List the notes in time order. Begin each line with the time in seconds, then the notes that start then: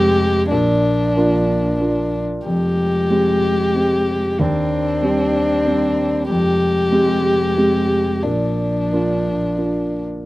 Already playing: F1 F2 G#3 C4 G4
0.51 A#1 A#2 F3 D4
1.17 A#3 D4 F4
1.80 A#3 D4 F4
2.46 F1 F2 G#3 G4
3.10 G#3 C4 G4
3.75 G#3 C4 G4
4.39 D#2 C4 D4
5.02 G3 C4 G4
5.66 G3 C4 G4
6.29 F1 F2 G#3 G4
6.92 G#3 C4 G4
7.57 G#3 C4 G4
8.23 A#1 A#2 F3 D4
8.93 A#3 D4 F4
9.57 A#3 D4 F4